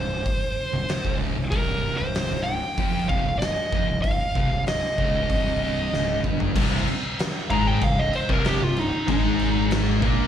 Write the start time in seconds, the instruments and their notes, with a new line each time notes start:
Already playing: fingered electric bass C1, distorted electric guitar C2, lead electric guitar C5
0.26 kick, open hi-hat
0.73 fingered electric bass C1, distorted electric guitar C2
0.89 muted fingered electric bass stroke, muted distorted electric guitar stroke, snare, open hi-hat
1.05 fingered electric bass C#1, distorted electric guitar C#2 C#3, kick
1.36 fingered electric bass C1, distorted electric guitar C2
1.51 fingered electric bass C1, distorted electric guitar C2 C3, lead electric guitar A#4, kick, open hi-hat
1.97 fingered electric bass C1, distorted electric guitar C2, lead electric guitar C5
2.15 snare, open hi-hat
2.30 fingered electric bass C1, distorted electric guitar C2
2.44 lead electric guitar G5
2.77 fingered electric bass F1, distorted electric guitar F2 F3, kick, open hi-hat
3.09 fingered electric bass C1, distorted electric guitar C2 C3, lead electric guitar F5, kick
3.25 fingered electric bass C1, distorted electric guitar C2
3.39 lead electric guitar D#5, snare, open hi-hat
3.72 fingered electric bass F1, distorted electric guitar F2 F3, kick
3.88 fingered electric bass C1, distorted electric guitar C2
4.02 lead electric guitar F5, kick, open hi-hat
4.35 fingered electric bass C1, distorted electric guitar C2 C3, kick
4.51 fingered electric bass C1, distorted electric guitar C2
4.67 lead electric guitar D#5, snare, open hi-hat
4.98 fingered electric bass C#1, distorted electric guitar C#2 C#3, kick
5.30 fingered electric bass C1, distorted electric guitar C2 C3, kick, open hi-hat
5.93 fingered electric bass C#1, distorted electric guitar C#2 C#3, snare
6.24 fingered electric bass G1, distorted electric guitar G2 G3, kick
6.40 floor tom
6.56 fingered electric bass C1, distorted electric guitar C2 C3, kick, crash
6.87 muted fingered electric bass stroke, muted distorted electric guitar stroke, crash
7.19 snare, crash
7.50 fingered electric bass G#1, distorted electric guitar G#2 G#3, lead electric guitar A#5, kick, crash
7.67 lead electric guitar G5
7.81 fingered electric bass C1, distorted electric guitar C2, lead electric guitar F5, kick, crash
7.99 lead electric guitar D#5
8.13 lead electric guitar C5, crash
8.29 fingered electric bass C1, distorted electric guitar C2 C3, lead electric guitar A#4, kick
8.45 lead electric guitar G4, snare, crash
8.60 fingered electric bass C1, distorted electric guitar C2, lead electric guitar F4
8.76 lead electric guitar D#4, crash
9.08 fingered electric bass G#1, distorted electric guitar G#2 G#3, lead electric guitar D#4, kick, crash
9.39 crash
9.71 snare, crash
10.02 fingered electric bass A#1, distorted electric guitar A#2 A#3, kick, crash